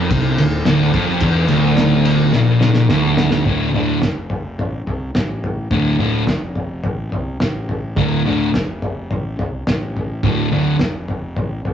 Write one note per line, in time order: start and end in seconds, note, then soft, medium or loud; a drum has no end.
0.00 0.10 F2 loud
0.10 0.37 C2 loud
0.10 0.39 C3 loud
0.10 kick loud
0.10 ride loud
0.38 0.66 D1 medium
0.38 0.62 D2 medium
0.38 ride medium
0.65 0.93 D1 medium
0.65 0.93 D2 loud
0.65 snare loud
0.65 ride loud
0.94 1.20 F1 loud
0.94 1.21 F2 loud
0.94 kick loud
0.94 ride medium
1.20 1.48 E1 loud
1.20 1.49 E2 loud
1.20 kick loud
1.20 ride loud
1.48 2.30 D1 medium
1.48 2.33 D2 loud
1.48 ride medium
1.77 snare loud
1.77 ride loud
2.05 ride medium
2.33 2.87 A#1 loud
2.33 2.89 A#2 loud
2.33 snare medium
2.61 snare medium
2.74 snare medium
2.89 3.42 D1 medium
2.89 3.44 D2 loud
2.89 snare medium
3.17 snare loud
3.31 snare loud
3.45 3.99 D1 medium
3.45 3.68 D2 medium
3.45 3.69 A2 medium
3.45 3.69 D3 medium
3.45 kick loud
3.45 floor tom medium
3.73 3.96 D2 medium
3.73 3.97 A2 medium
3.73 3.97 D3 loud
3.73 floor tom medium
4.02 4.55 F1 medium
4.02 snare medium
4.02 floor tom medium
4.30 floor tom medium
4.58 4.85 A1 medium
4.58 floor tom medium
4.86 5.13 C2 medium
4.86 floor tom medium
5.14 5.67 A1 medium
5.14 snare loud
5.14 floor tom medium
5.44 floor tom medium
5.71 6.24 D1 medium
5.71 5.94 D2 medium
5.71 5.94 A2 medium
5.71 5.95 D3 loud
5.71 kick loud
5.71 floor tom medium
5.99 6.22 D2 medium
5.99 6.22 A2 loud
5.99 6.23 D3 loud
5.99 floor tom medium
6.27 6.81 F1 medium
6.27 snare loud
6.27 floor tom medium
6.55 floor tom medium
6.84 7.11 A1 medium
6.84 floor tom medium
7.12 7.39 C2 medium
7.12 floor tom medium
7.40 7.94 A1 medium
7.40 snare loud
7.40 floor tom medium
7.69 floor tom medium
7.96 8.50 D1 medium
7.96 8.20 D2 medium
7.96 8.21 A2 loud
7.96 8.21 D3 medium
7.96 kick loud
7.96 floor tom medium
8.25 8.48 D2 loud
8.25 8.49 A2 loud
8.25 8.49 D3 loud
8.25 floor tom medium
8.54 9.07 F1 loud
8.54 snare loud
8.54 floor tom medium
8.82 floor tom medium
9.11 9.37 A1 medium
9.11 floor tom medium
9.39 9.66 C2 medium
9.39 floor tom medium
9.67 10.20 A1 medium
9.67 snare loud
9.67 floor tom medium
9.97 floor tom medium
10.23 10.77 D1 medium
10.23 10.47 D2 medium
10.23 10.47 A2 medium
10.23 10.48 D3 medium
10.23 kick loud
10.23 floor tom medium
10.52 10.75 D2 medium
10.52 10.75 A2 loud
10.52 10.76 D3 loud
10.52 floor tom medium
10.79 11.34 F1 medium
10.79 snare loud
10.79 floor tom medium
11.08 floor tom medium
11.37 11.64 A1 medium
11.37 floor tom medium
11.65 11.74 C2 medium
11.65 floor tom medium